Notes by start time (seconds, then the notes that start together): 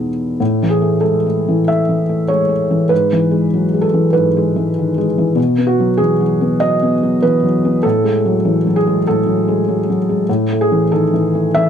Already playing: E2 B2 G#3 B3 D#4 G#4
0.40 A2
0.63 E3
0.70 G#4
0.82 A3
1.01 G#3 A4
1.26 A3
1.48 E3
1.68 A3 E5
1.89 E3
2.09 A3
2.28 G#3 C#5
2.49 A3
2.71 E3
2.89 G#2 B4
3.13 E3
3.31 G#3
3.54 F#3
3.74 G#3
3.81 A4
3.94 E3
4.13 G#2 B4
4.37 G#3
4.56 E3
4.79 D#3
4.98 G#3
5.18 E3
5.36 B2
5.58 B3
5.67 F#4
5.80 F#3
5.97 E3 G#4
6.20 F#3
6.41 B3
6.60 F#3 D#5
6.83 B3
7.03 F#3
7.22 E3 B4
7.43 F#3
7.65 B3
7.83 A2 A4
8.04 G#3
8.26 F#3
8.45 E3
8.67 F#3
8.76 G#4
8.87 G#3
9.07 A2 A4
9.26 F#3
9.48 G#3
9.68 F#3
9.90 F#3
10.09 G#3
10.29 A2
10.52 A3
10.61 G#4
10.72 E3
10.92 D#3 A4
11.14 E3
11.35 A3
11.54 E3 E5